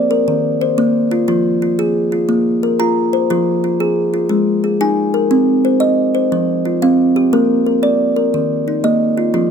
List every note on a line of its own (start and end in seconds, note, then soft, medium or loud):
0.00 0.11 C5 medium
0.00 0.11 D5 medium
0.11 0.45 A#4 medium
0.28 0.61 D#3 medium
0.61 1.12 C5 medium
0.78 1.12 A#3 medium
1.11 1.27 F4 medium
1.28 1.62 F3 medium
1.28 1.61 F4 medium
1.62 2.11 F4 medium
1.79 2.12 G#4 medium
2.12 2.46 F4 medium
2.29 2.62 A#3 medium
2.63 3.13 A#4 medium
2.80 3.13 F4 medium
2.80 3.30 A#5 medium
3.13 3.47 C5 medium
3.30 3.64 F3 medium
3.30 3.63 F4 medium
3.64 4.12 F4 medium
3.80 4.14 G#4 medium
4.14 4.47 F4 medium
4.29 4.63 G#3 medium
4.64 5.14 G#4 medium
4.81 5.14 D#4 medium
4.81 5.31 G#5 medium
5.14 5.48 A#4 medium
5.31 5.65 C4 medium
5.65 6.13 C5 medium
5.80 6.14 D#5 medium
6.15 6.48 C5 medium
6.32 6.65 F3 medium
6.65 7.16 F4 medium
6.82 7.16 C4 medium
6.82 7.32 F5 medium
7.16 7.49 G4 medium
7.33 7.66 A#3 medium
7.33 7.65 A#4 medium
7.66 8.15 A#4 medium
7.83 8.16 D5 medium
8.16 8.50 A#4 medium
8.34 8.67 D#3 medium
8.68 9.17 D#4 medium
8.84 9.17 A#3 medium
8.84 9.34 D#5 medium
9.17 9.33 F4 medium
9.34 9.51 F3 medium
9.34 9.51 F4 medium